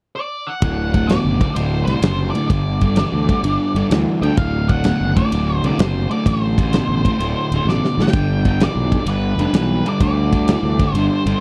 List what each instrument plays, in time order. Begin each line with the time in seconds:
0.16 lead electric guitar D5
0.47 lead electric guitar F#5
0.62 fingered electric bass D1, overdriven electric guitar D2 A2, kick, ride
0.93 overdriven electric guitar D2 A2, lead electric guitar F#5, kick, ride
1.07 overdriven electric guitar D2 B2, lead electric guitar D5, snare, ride
1.25 fingered electric bass F#1
1.40 overdriven electric guitar D2 A2, kick, ride
1.55 fingered electric bass D1, overdriven electric guitar D2 A2, lead electric guitar C5, ride
1.85 fingered electric bass C2, overdriven electric guitar D2, lead electric guitar C5, snare, ride
1.89 overdriven electric guitar A2
2.02 fingered electric bass F#1, overdriven electric guitar D2 B2, snare, ride
2.30 lead electric guitar D5
2.35 overdriven electric guitar D2 A2, ride
2.48 fingered electric bass G1, overdriven electric guitar G2, lead electric guitar D5, kick, ride
2.52 overdriven electric guitar D3
2.81 overdriven electric guitar G2 D3, kick, ride
2.96 overdriven electric guitar G2 E3, snare, ride
3.12 fingered electric bass D2
3.29 overdriven electric guitar G2 D3, kick, ride
3.43 fingered electric bass G1, overdriven electric guitar G2 D3, ride
3.74 fingered electric bass G1, overdriven electric guitar G2 D3, ride
3.90 fingered electric bass D2, overdriven electric guitar G2 E3, snare, ride
4.21 fingered electric bass D2, overdriven electric guitar G2 D3, lead electric guitar G5, ride
4.37 fingered electric bass D1, overdriven electric guitar D2 A2, lead electric guitar F5, kick, ride
4.69 overdriven electric guitar D2 A2, lead electric guitar F#5, kick, ride
4.84 overdriven electric guitar D2 B2, snare, ride
5.01 fingered electric bass F#1
5.16 overdriven electric guitar D2 A2, lead electric guitar D5, kick, ride
5.32 fingered electric bass D1, overdriven electric guitar D2 A2, ride
5.63 fingered electric bass C2, overdriven electric guitar D2 A2, lead electric guitar D5, ride
5.78 fingered electric bass F#1, overdriven electric guitar D2 B2, lead electric guitar C5, snare, ride
6.11 overdriven electric guitar D2 A2, lead electric guitar D5, ride
6.26 fingered electric bass A1, overdriven electric guitar D2 A2, lead electric guitar C5, kick, ride
6.58 overdriven electric guitar D2 A2, kick, ride
6.73 overdriven electric guitar D2 B2, snare, ride
6.88 fingered electric bass A1
7.05 overdriven electric guitar D2 A2, kick, ride
7.20 fingered electric bass D1, overdriven electric guitar D2 A2, ride
7.51 fingered electric bass D1, overdriven electric guitar D2 A2, ride
7.65 fingered electric bass A1, overdriven electric guitar D2 B2, snare
7.69 lead electric guitar D5
7.84 snare
7.97 fingered electric bass A1, overdriven electric guitar D2 A2, snare
8.02 lead electric guitar G5
8.07 snare
8.13 fingered electric bass G1, overdriven electric guitar G2 D3, kick, ride
8.45 overdriven electric guitar G2 D3, lead electric guitar G5, kick, ride
8.60 overdriven electric guitar G2 E3, lead electric guitar D5, snare, ride
8.76 fingered electric bass B1
8.91 overdriven electric guitar G2 D3, kick, ride
9.06 fingered electric bass G1, overdriven electric guitar G2 D3, lead electric guitar B4, ride
9.38 fingered electric bass F1, overdriven electric guitar G2 D3, lead electric guitar B4, ride
9.53 fingered electric bass B1, overdriven electric guitar G2 E3, snare, ride
9.86 overdriven electric guitar G2 D3, lead electric guitar D5, ride
10.00 fingered electric bass D2, overdriven electric guitar G2 D3, lead electric guitar D5, kick, ride
10.32 overdriven electric guitar G2 D3, kick, ride
10.48 overdriven electric guitar G2 E3, snare, ride
10.63 fingered electric bass D2
10.79 overdriven electric guitar G2 D3, kick, ride
10.93 fingered electric bass G1, overdriven electric guitar G2 D3, lead electric guitar C5, ride
11.26 fingered electric bass G1, overdriven electric guitar G2 D3, ride